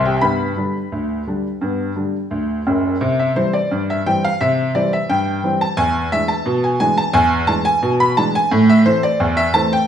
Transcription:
0.00 0.15 C2 medium
0.00 0.15 C3 medium
0.05 0.22 G4 medium
0.05 0.23 G5 medium
0.21 0.52 G2 medium
0.21 0.42 B3 medium
0.21 2.62 B4 medium
0.21 2.61 B5 medium
0.57 0.76 D3 soft
0.57 0.76 G3 soft
0.57 0.77 D4 medium
0.92 1.22 D2 medium
1.27 1.46 D3 soft
1.27 1.46 G3 soft
1.27 1.47 D4 medium
1.61 1.91 G2 medium
1.61 1.82 B3 soft
1.95 2.15 D3 soft
1.95 2.16 G3 soft
1.95 2.16 D4 soft
2.31 2.60 D2 medium
2.67 2.94 F#1 medium
2.67 2.94 F#2 medium
3.01 3.30 C3 medium
3.19 3.36 E5 medium
3.36 3.55 E3 medium
3.36 3.55 G3 medium
3.36 3.55 C4 medium
3.36 3.53 C5 medium
3.53 3.81 D5 medium
3.71 4.00 G2 medium
3.90 4.06 E5 medium
4.06 4.25 E3 medium
4.06 4.25 G3 medium
4.06 4.25 C4 medium
4.06 4.23 G5 loud
4.24 4.40 F5 loud
4.41 4.69 C3 medium
4.41 4.72 E5 medium
4.75 4.93 E3 medium
4.75 4.94 G3 medium
4.75 4.94 C4 medium
4.75 4.91 D5 medium
4.93 5.09 E5 medium
5.09 5.38 G2 medium
5.09 5.58 G5 loud
5.44 5.62 E3 medium
5.44 5.62 G3 soft
5.44 5.63 C4 medium
5.61 5.77 A5 loud
5.77 6.06 E2 medium
5.77 6.10 G#5 loud
6.12 6.31 E3 medium
6.12 6.31 G#3 soft
6.12 6.31 D4 medium
6.12 6.29 E5 loud
6.28 6.61 A5 loud
6.46 6.75 B2 medium
6.64 6.79 G#5 medium
6.80 6.99 E3 medium
6.80 6.99 G#3 medium
6.80 7.00 D4 medium
6.80 6.97 G#5 loud
6.98 7.14 A5 loud
7.13 7.43 E2 loud
7.13 7.46 G#5 loud
7.47 7.66 E3 medium
7.47 7.67 G#3 medium
7.47 7.67 D4 medium
7.47 7.65 A5 loud
7.65 7.92 G#5 loud
7.83 8.12 B2 medium
8.00 8.17 B5 loud
8.17 8.36 E3 medium
8.17 8.36 G#3 medium
8.17 8.37 D4 medium
8.17 8.34 A5 loud
8.35 8.52 G#5 loud
8.52 8.80 A2 loud
8.69 8.86 E5 loud
8.85 9.04 E3 medium
8.85 9.04 A3 medium
8.85 9.05 C4 medium
8.85 9.03 C5 loud
9.03 9.35 D5 loud
9.20 9.49 E2 medium
9.37 9.54 E5 loud
9.54 9.73 E3 medium
9.54 9.73 A3 medium
9.54 9.74 C4 medium
9.54 9.71 A5 loud
9.73 9.87 G5 loud

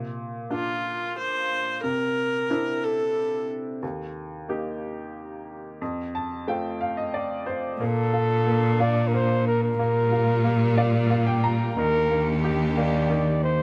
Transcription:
0.00 1.79 A#2 soft
0.50 1.79 A#3 soft
0.50 1.79 D4 soft
0.50 1.79 F4 soft
0.50 1.14 F4 medium
1.18 1.80 C5 medium
1.83 3.78 C3 soft
1.83 2.85 A#4 medium
2.50 3.78 C4 soft
2.50 3.79 D4 soft
2.50 3.79 E4 soft
2.83 3.49 A4 medium
3.83 5.77 D#2 soft
4.49 5.77 A#3 soft
4.49 5.77 D#4 soft
4.49 5.78 G4 soft
5.81 7.76 F2 medium
6.15 6.45 A5 medium
6.48 7.76 A3 soft
6.48 7.77 C4 soft
6.48 7.77 F4 soft
6.48 6.79 G5 medium
6.81 6.96 F5 medium
6.97 7.13 D#5 medium
7.14 7.45 D5 medium
7.46 7.77 C5 medium
7.79 9.75 A#2 medium
7.79 9.76 A#3 medium
7.79 8.45 A#3 medium
7.79 9.76 D4 medium
7.79 8.82 A4 loud
8.13 8.78 F4 medium
8.47 9.12 A#3 medium
8.80 9.76 F4 medium
8.80 9.09 D5 loud
9.08 9.16 A#4 medium
9.14 9.77 A#3 medium
9.14 9.46 C5 loud
9.47 9.62 A#4 loud
9.63 11.40 A#4 loud
9.78 11.72 A#2 loud
9.78 11.74 G3 medium
9.78 13.63 A#3 medium
9.78 10.43 A#3 medium
9.78 11.74 F4 medium
10.12 10.76 F4 medium
10.44 11.08 A#3 medium
10.77 11.73 F4 medium
10.77 11.08 D5 medium
11.10 11.74 A#3 medium
11.10 11.26 F5 medium
11.27 11.42 G5 medium
11.44 11.74 A#5 medium
11.76 13.63 D#2 loud
11.76 13.63 D#3 medium
11.76 13.09 D#3 medium
11.76 13.63 D4 medium
11.76 13.63 G4 medium
11.76 12.39 A#4 loud
12.10 12.76 A#3 medium
12.44 13.63 G4 medium
12.77 13.63 A#3 medium
12.77 13.39 D5 medium
13.10 13.63 D#3 medium
13.43 13.63 C5 medium

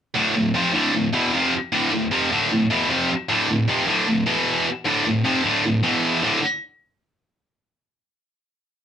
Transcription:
0.15 0.34 D2 loud
0.15 0.35 A2 loud
0.15 0.35 D3 loud
0.35 0.51 D2 medium
0.35 0.51 A2 medium
0.54 0.73 F2 medium
0.54 0.74 C3 loud
0.54 0.74 F3 loud
0.74 0.92 D2 loud
0.74 0.93 A2 loud
0.74 0.93 D3 loud
0.93 1.09 D2 medium
0.93 1.09 A2 medium
1.13 1.32 E2 medium
1.13 1.32 B2 medium
1.13 1.33 E3 medium
1.33 1.52 F2 medium
1.33 1.52 C3 medium
1.33 1.53 F3 medium
1.73 1.91 D2 loud
1.73 1.91 A2 loud
1.73 1.92 D3 loud
1.92 2.07 D2 medium
1.92 2.08 A2 medium
2.11 2.30 F2 loud
2.11 2.31 C3 medium
2.11 2.31 F3 loud
2.31 2.49 D2 loud
2.31 2.50 A2 loud
2.31 2.51 D3 loud
2.50 2.66 D2 medium
2.50 2.67 A2 medium
2.70 2.89 E2 medium
2.70 2.89 B2 loud
2.70 2.90 E3 loud
2.89 3.09 F2 medium
2.89 3.09 C3 medium
2.89 3.09 F3 medium
3.29 3.47 D2 loud
3.29 3.48 A2 loud
3.29 3.49 D3 loud
3.48 3.64 D2 medium
3.48 3.65 A2 medium
3.68 3.86 F2 loud
3.68 3.87 C3 loud
3.68 3.88 F3 loud
3.87 4.06 D2 loud
3.87 4.06 A2 loud
3.87 4.07 D3 loud
4.07 4.23 D2 medium
4.07 4.23 A2 medium
4.26 4.65 E2 medium
4.26 4.66 B2 medium
4.26 4.66 E3 loud
4.85 5.04 D2 loud
4.85 5.04 A2 loud
4.85 5.05 D3 loud
5.05 5.21 D2 medium
5.05 5.21 A2 medium
5.24 5.43 F2 loud
5.24 5.44 C3 loud
5.24 5.44 F3 loud
5.44 5.63 D2 medium
5.44 5.63 A2 loud
5.44 5.64 D3 loud
5.64 5.80 D2 medium
5.64 5.80 A2 medium
5.83 6.22 E2 medium
5.83 6.22 B2 loud
5.83 6.23 E3 medium
6.22 6.38 D2 loud
6.22 6.39 A2 loud
6.22 6.39 D3 loud

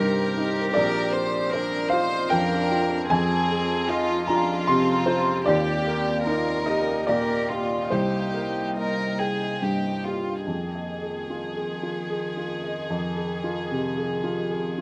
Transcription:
0.00 0.70 C2 medium
0.00 0.59 G2 soft
0.00 3.07 C4 medium
0.00 0.20 D#4 soft
0.00 1.53 G4 medium
0.00 0.70 A#4 medium
0.00 0.72 A#4 medium
0.00 0.76 A#4 medium
0.00 0.77 C5 medium
0.00 0.76 D#5 medium
0.00 0.74 G5 medium
0.37 0.75 D#4 soft
0.74 3.06 A#1 medium
0.74 5.47 F4 medium
0.74 3.05 A#4 medium
0.74 1.10 A#4 medium
0.74 1.87 D5 medium
1.13 1.77 A#4 soft
1.13 1.52 C5 medium
1.52 1.93 D4 medium
1.52 1.91 A#4 medium
1.52 2.16 C5 medium
1.89 2.33 D#4 medium
1.89 2.55 F4 medium
1.89 2.31 C5 medium
1.89 2.27 F5 medium
2.30 2.94 F2 soft
2.30 3.08 D4 medium
2.30 3.09 A#4 medium
2.30 3.05 G5 medium
2.72 3.10 F4 medium
3.08 5.43 F2 medium
3.08 5.42 C4 medium
3.08 3.90 C4 medium
3.08 3.86 G#4 medium
3.08 7.91 F5 medium
3.08 4.24 G#5 loud
3.51 4.13 G#4 medium
3.88 4.30 D#4 medium
3.88 4.26 F4 medium
3.88 4.52 D#5 medium
4.27 4.70 D4 medium
4.27 5.44 F4 medium
4.27 4.92 F4 medium
4.27 4.64 A#5 medium
4.67 5.31 C3 medium
4.67 5.46 C4 medium
4.67 5.04 C6 medium
5.06 5.47 F4 medium
5.06 5.43 C5 medium
5.45 7.88 D#2 medium
5.45 10.47 A#3 medium
5.45 6.25 G4 medium
5.45 6.62 D5 medium
5.45 10.47 G5 medium
5.87 6.51 A#4 medium
6.24 6.91 D#4 medium
6.24 6.68 F4 medium
6.24 7.05 A#4 medium
6.66 7.09 D#4 medium
6.66 7.33 G4 soft
6.66 7.05 D#5 medium
7.07 7.75 A#2 soft
7.07 7.50 G4 medium
7.07 7.49 A#4 medium
7.07 7.87 D5 medium
7.49 7.91 F4 medium
7.49 7.92 G4 soft
7.90 10.43 C2 soft
7.90 10.01 D#4 medium
7.90 8.68 G4 soft
7.90 9.58 C5 medium
7.90 10.43 D#5 medium
8.34 9.03 A#4 soft
8.77 9.17 A#4 medium
8.77 9.46 D#5 soft
9.19 9.62 G#4 medium
9.19 9.88 G5 soft
9.62 10.31 G2 soft
9.62 10.05 G4 medium
10.05 10.48 F4 soft
10.05 10.48 G4 soft
10.46 12.87 F2 soft
10.46 14.81 D#3 soft
10.46 14.81 G#4 soft
10.75 11.19 D#5 soft
11.02 11.46 G#4 soft
11.30 11.73 F4 soft
11.56 12.00 G#4 soft
11.83 12.27 F4 soft
12.10 12.53 G#4 soft
12.37 12.80 F4 soft
12.64 13.07 D#5 soft
12.90 14.81 F2 soft
13.17 13.60 G#4 soft
13.44 13.87 F4 soft
13.71 14.14 C3 soft
13.97 14.40 G#4 soft
14.24 14.67 F4 soft
14.51 14.81 G#4 soft
14.78 14.81 F4 soft

